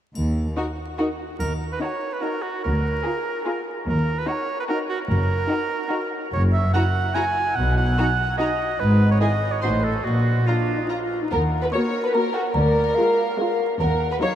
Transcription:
0.14 cello section D#2, double bass section D#2, triangle
0.56 viola section D#4, violin section F#4 A#4
0.98 viola section D#4, violin section F#4 A#4
1.40 cello section D#2, double bass section D#2, oboe A#4, triangle
1.73 oboe B4
1.81 viola section D#4, violin section F#4 A#5, oboe C#5
2.13 oboe B4
2.22 viola section D#4, violin section F#4 A#5, oboe A#4
2.42 oboe F#4
2.64 cello section D2, double bass section D2, oboe A#4
3.04 viola section F4, violin section G#4 A#5
3.45 viola section F4, violin section G#4 A#5
3.87 cello section D#2, double bass section D#2, oboe A#4
4.18 oboe B4
4.28 viola section D#4, violin section F#4 A#5, oboe C#5
4.60 oboe B4
4.69 viola section D#4, violin section F#4 A#5, oboe A#4
4.89 oboe F#4
5.09 double bass section F#1, cello section F#2, oboe A#4
5.50 viola section D#4, violin section F#4 A#5
5.91 viola section D#4, violin section F#4 A#5
6.33 double bass section F#1, cello section F#2, oboe C#5
6.53 oboe E5
6.74 viola section E4, violin section F#4 A#5, oboe F#5
7.14 viola section E4, violin section F#4 A#5, oboe G#5
7.56 double bass section B1, cello section B2, oboe F#5
7.77 oboe F#5
7.98 viola section D#4, violin section F#4 A#5
8.38 viola section D#4, violin section F#4 A#5, oboe D#5
8.80 double bass section G#1, cello section G#2, oboe B4
9.11 oboe C#5
9.21 viola section E4, violin section G#4 G#5, oboe D#5
9.52 oboe C#5
9.62 double bass section A1, cello section A2, viola section D#4, violin section F#4 C6, oboe C5
9.84 oboe A4
10.04 double bass section A#1, cello section A#2, oboe F#4
10.47 viola section D4, oboe F4, violin section F4 A#5
10.80 viola section D#4
10.90 viola section F4, violin section F4 A#5
11.22 viola section D#4
11.31 cello section D#2, double bass section D#2, violin section A#4, flute F#5, music box A#5
11.62 violin section B4, music box B5
11.72 viola section A#3 F#4, flute A#4, violin section C#5, music box C#6
12.04 violin section B4, music box B5
12.14 viola section A#3 F#4, violin section A#4, music box A#5
12.34 violin section F#4, music box F#5
12.54 cello section D2, double bass section D2, violin section A#4, flute D5, music box A#5
12.95 viola section G#3 F4, flute F5
13.39 viola section G#3 F4, flute F5
13.80 cello section D#2, double bass section D#2, violin section A#4, flute F#5, music box A#5
14.11 violin section B4, music box B5
14.21 viola section F#3 D#4, violin section C#5, flute F5, music box C#6

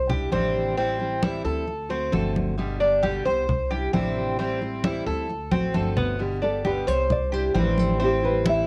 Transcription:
Already playing: upright bass C2
0.09 steel-string acoustic guitar G3 D4 E4, cuban tres G4, high conga, low conga
0.31 upright bass A1, steel-string acoustic guitar C3 E3 G3 D4 E4, cuban tres C4, high conga
0.77 steel-string acoustic guitar E3 G3 C4 E4, cuban tres C4, high conga
0.99 steel-string acoustic guitar G3 C4 E4, high conga
1.22 steel-string acoustic guitar E3 G3 C4 E4, cuban tres E4, high conga
1.44 upright bass D2, steel-string acoustic guitar G3 C4 E4, cuban tres A4, high conga
1.67 muted steel-string acoustic guitar stroke, high conga
1.89 steel-string acoustic guitar A3 C4 F#4, cuban tres C4, high conga
2.12 upright bass G1, steel-string acoustic guitar D3 A3 C4 F#4, cuban tres A4, high conga
2.36 high conga
2.58 steel-string acoustic guitar B2 D3 G3 B3 G4, high conga
2.80 steel-string acoustic guitar G3 B3 G4, cuban tres D4, high conga
3.03 steel-string acoustic guitar B2 D3 G3 B3 G4, cuban tres G4, high conga
3.25 upright bass C2, steel-string acoustic guitar G3 B3 G4, cuban tres C5, high conga
3.49 muted steel-string acoustic guitar stroke, high conga, low conga
3.70 steel-string acoustic guitar G3 D4 E4, cuban tres G4, high conga
3.93 upright bass A1, steel-string acoustic guitar C3 E3 G3 D4 E4, cuban tres C4, high conga
4.39 steel-string acoustic guitar E3 G3 C4 E4, cuban tres C4, high conga
4.61 steel-string acoustic guitar G3 C4 E4, high conga
4.84 steel-string acoustic guitar E3 G3 C4 E4, cuban tres E4, high conga
5.06 upright bass D2, steel-string acoustic guitar G3 C4 E4, cuban tres A4, high conga
5.29 muted steel-string acoustic guitar stroke, high conga
5.51 upright bass A1, steel-string acoustic guitar A3 C4 F#4, cuban tres C4, high conga
5.74 upright bass G1, steel-string acoustic guitar D3 A3 C4 F#4, cuban tres A4, high conga
5.97 cuban tres B3, low conga
6.19 steel-string acoustic guitar B2 D3 G3 B3 G4, high conga
6.42 steel-string acoustic guitar G3 B3 G4, cuban tres D4, nylon-string guitar A4, high conga
6.64 steel-string acoustic guitar B2 D3 G3 B3 G4, cuban tres G4, nylon-string guitar B4, high conga
6.87 upright bass C2, steel-string acoustic guitar G3 B3 G4, cuban tres C5, nylon-string guitar C#5, high conga
7.10 nylon-string guitar D5, muted steel-string acoustic guitar stroke, high conga, low conga
7.32 steel-string acoustic guitar G3 D4 E4, cuban tres G4, nylon-string guitar C5, high conga
7.54 upright bass A1, steel-string acoustic guitar C3 E3 G3 D4 E4, cuban tres C4, high conga
7.59 nylon-string guitar B4
7.78 nylon-string guitar A4, high conga
8.00 steel-string acoustic guitar E3 G3 C4 E4, cuban tres C4, high conga
8.04 nylon-string guitar G4
8.22 steel-string acoustic guitar G3 C4 E4, nylon-string guitar B4, high conga
8.44 steel-string acoustic guitar E3 G3 C4 E4, cuban tres E4, high conga
8.49 nylon-string guitar E5

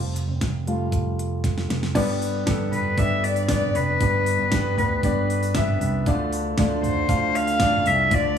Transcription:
Already playing: picked electric bass F1
0.16 closed hi-hat
0.28 picked electric bass F1
0.41 picked electric bass F1, kick, snare, closed hi-hat
0.67 grand piano G3 A3 F4, closed hi-hat
0.92 kick, closed hi-hat
1.19 closed hi-hat
1.44 kick, snare, closed hi-hat
1.58 snare
1.69 picked electric bass F1, snare, closed hi-hat
1.83 snare
1.95 picked electric bass G1, grand piano G2 B3 D4 G4 D5, kick, open hi-hat, crash
2.22 open hi-hat
2.46 picked electric bass G1, grand piano B3 D4 G4 A4, kick, snare, open hi-hat
2.72 cello B4, floor tom, open hi-hat
2.97 picked electric bass G1, grand piano B3 D4 G4 D5, cello E5, kick, open hi-hat
3.24 cello D5, open hi-hat
3.36 open hi-hat
3.49 grand piano B3 D4 G4 D5, cello D5, kick, snare, open hi-hat
3.62 floor tom
3.75 picked electric bass F1, cello B4, open hi-hat
4.01 picked electric bass G1, grand piano G2 B3 D4 G4 D5, kick, open hi-hat
4.26 open hi-hat
4.39 picked electric bass G1
4.52 grand piano B3 D4 G4 B4, kick, snare, open hi-hat
4.77 picked electric bass D2, cello B4, floor tom, open hi-hat
5.03 picked electric bass G1, grand piano B3 D4 G4 D5, kick, open hi-hat
5.30 open hi-hat
5.43 open hi-hat
5.55 grand piano B3 D4 G4 E5, kick, snare, open hi-hat
5.68 floor tom
5.80 picked electric bass C2, open hi-hat
6.06 picked electric bass D2, grand piano D3 A3 D4 F4 D5, kick, open hi-hat
6.33 open hi-hat
6.58 picked electric bass D2, grand piano A3 D4 F4 D5, kick, snare, open hi-hat
6.83 cello C5, floor tom, open hi-hat
7.09 picked electric bass D2, grand piano A3 D4 F4 F5, kick, open hi-hat
7.35 cello F5, open hi-hat
7.47 open hi-hat
7.60 grand piano A3 D4 F4 D5, kick, snare, open hi-hat
7.73 floor tom
7.86 picked electric bass C2, cello E5, open hi-hat
8.11 picked electric bass D2, grand piano D3 A3 D4 F4 D5, cello D5, kick, open hi-hat

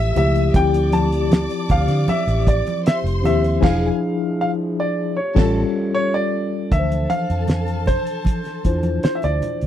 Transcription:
Already playing: fingered electric bass A1, french horn section F3 A3 G4, grand piano E5, string section E5 E6
0.15 fingered electric bass C#2, tine electric piano F3 A3 E4 G4, grand piano E5, closed hi-hat, low conga
0.35 closed hi-hat
0.53 fingered electric bass D2, french horn section F3 C4, tine electric piano F3 C4 E4 G4, string section D5 D6, grand piano G5, kick, closed hi-hat, muted conga
0.74 closed hi-hat
0.92 grand piano A5, closed hi-hat, high conga
1.12 closed hi-hat
1.31 snare, closed hi-hat, high conga
1.50 closed hi-hat
1.69 fingered electric bass D2, grand piano F5, kick, closed hi-hat, low conga
1.88 fingered electric bass D3, snare, closed hi-hat
2.08 grand piano E5, muted fingered electric bass stroke, closed hi-hat, muted conga, high conga
2.27 fingered electric bass A1, closed hi-hat
2.47 grand piano D5, kick, closed hi-hat
2.67 closed hi-hat, high conga
2.86 string section C5 C6, grand piano E5, snare, closed hi-hat, muted conga
3.04 fingered electric bass F1, closed hi-hat
3.23 fingered electric bass D#2, tine electric piano F3 C4 E4 G4, grand piano E5, closed hi-hat, low conga
3.44 closed hi-hat
3.60 fingered electric bass E1, tine electric piano F3 D4 E4 G#4, french horn section F3 G#3 D4 E4, string section G#4 G#5, grand piano F5, kick, crash
3.65 snare
4.41 grand piano F5
4.80 grand piano D5
5.15 french horn section C#3 F3 A3 G4, grand piano C#5
5.35 fingered electric bass A1, tine electric piano G3 C#4 F4 A4, string section A4 A5, kick, snare, crash
5.94 grand piano C#5
6.14 grand piano D5
6.71 fingered electric bass D2, tine electric piano E3 F3 D4 A#4, string section A4 A5, grand piano E5, kick, closed hi-hat
6.79 tine electric piano C5
6.92 closed hi-hat, muted conga
7.10 grand piano F5, closed hi-hat, high conga
7.30 fingered electric bass F2, closed hi-hat
7.48 snare, closed hi-hat, muted conga, high conga
7.67 closed hi-hat, muted conga
7.86 grand piano C5, kick, closed hi-hat, low conga
8.07 closed hi-hat
8.25 kick, closed hi-hat, high conga
8.44 snare, closed hi-hat, muted conga
8.65 fingered electric bass E2, tine electric piano D4 E4 F4 C5, kick, closed hi-hat
8.83 closed hi-hat, high conga
9.03 grand piano C5, muted fingered electric bass stroke, snare, closed hi-hat, muted conga
9.15 grand piano E5
9.22 fingered electric bass D2, grand piano D5, closed hi-hat, muted conga
9.42 closed hi-hat, low conga
9.61 fingered electric bass D2, closed hi-hat

